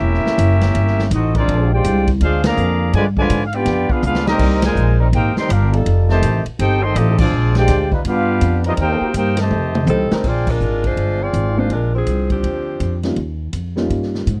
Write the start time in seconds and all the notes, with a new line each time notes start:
Already playing: A#3 C#4 E4 G4 A#4 E5
0.01 E1
0.14 snare
0.24 muted upright bass stroke, snare
0.38 F#1, kick, hi-hat pedal, ride
0.61 snare, ride
0.75 G1, kick, ride
0.87 snare
0.99 snare
1.11 A1 C4 D#4 F#4 A4 D#5, kick, hi-hat pedal, ride
1.34 F3 G#3 C4 D4 F4 G#4 A#4 D5, kick, ride
1.48 A#1, kick, ride
1.73 G#3 D4 F4 G4 C5 D5 G5
1.84 C2, kick, hi-hat pedal, ride
2.07 kick, ride
2.21 D2 G#3 D4 F4 G#4 C5 F5, kick, ride
2.44 D3 F3 A#3 G#4 D5 F5 A#5, snare, ride
2.57 F2 G#3 C4 D4 A#4, hi-hat pedal
2.93 G2 D3 F3 G#3 F4 B4 D5 G#5, kick, ride
3.17 D3 F3 G#3 F4 B4 D5 G#5, kick
3.30 G#2, kick, hi-hat pedal, ride
3.45 F5
3.53 B3 D4 F4 G4 B4 D5 G5, ride
3.66 F2, kick, snare, ride
3.89 B3 D4 F4 G#4 B4 F5, muted upright bass stroke, kick
4.02 C#2 B3 D4 F4 G#4 B4 F5, hi-hat pedal, mid tom
4.15 snare
4.25 G3 A#3 C4 D#4 A#4 D#5, snare
4.30 G4
4.39 C2, kick, crash
4.62 A#2 D#3 G#3 D#4 A#4 C5 G#5, snare, ride
4.75 A#1, hi-hat pedal
4.98 G3 C4 D#4 A#4
5.12 G#1 A#3 D#4 G4 A#4 C5 G5, kick, ride
5.36 D#3 G3 C4 A#4 D#5 G5 C6, muted upright bass stroke, snare
5.49 G1 D4 F4 G4 A#4 F5, kick, hi-hat pedal, ride
5.72 G3 D#4 F4 A4, ride
5.86 F1, kick, ride
6.09 C3 D#3 A3 G4 C5 D#5 A5, snare
6.22 A1, kick, hi-hat pedal, ride
6.45 muted upright bass stroke, ride
6.59 G1 C4 D#4 G4 A4 C5 G5, kick, ride
6.83 D#3 A3 C4 A4 D#5 G5 C6
6.94 A1 G3 A3 C4 D#4 F4 G4 A4 D#5, kick, hi-hat pedal, ride
7.18 F3 G#3 C4 D4 F4 G#4 D5, kick, crash
7.31 A#1
7.55 G#3 D4 F4 G4 C5 D5 G5, snare, ride
7.68 D2, kick, snare, hi-hat pedal, ride
7.91 G3 D#4 F4 B4, kick
8.05 G2 B3 D4 F4 G4 B4 F5, kick, ride
8.41 F2, kick, hi-hat pedal, ride
8.64 F3 G3 B3 C4 D#4 A#4, ride
8.68 B3 F4 G4 D#5
8.77 D#2 A#3 D#4 G4, kick, ride
8.81 D#4 A#4 C5 G5
9.01 muted upright bass stroke
9.14 G2 A#3 D#4 G4 A#4 C5 G5, kick, hi-hat pedal, ride
9.37 C3 D#3 A3, snare, ride
9.41 G4 C5 D#5 A5
9.50 F2, mid tom
9.75 mid tom
9.87 C2 G3 C4 D#4 A4, hi-hat pedal, high tom
10.11 G3 G#3 C4 D4 D#4 A#4, muted upright bass stroke, snare
10.24 A#1 C4 F4 G#4 D5, kick, crash
10.47 G#3 D4 F4 A#4, kick, crash
10.60 G#1, hi-hat pedal
10.84 G#3 D4 F4 C5, kick, ride
10.97 G1, kick, ride
11.22 C4 F4 G#4 D5
11.33 G#1, kick, hi-hat pedal, ride
11.57 G#3 A#3 C4 D4 F4 C5
11.70 A#1 G#3 D4 F4 A#4, kick, ride
11.95 F3 C4 D4 G#4
12.06 C2, kick, hi-hat pedal, ride
12.30 F3 C4 D4 G4, kick, ride
12.43 D2, kick, ride
12.80 F2, kick, hi-hat pedal, ride
13.03 G3 A#3 C#4 D#4 F4, snare, ride
13.16 D#2, kick, ride
13.53 F2, kick, hi-hat pedal, ride
13.76 G3 A#3 C#4 D#4 F4, snare
13.90 G2, kick, ride
14.03 snare
14.15 snare
14.27 G#2, kick, hi-hat pedal, ride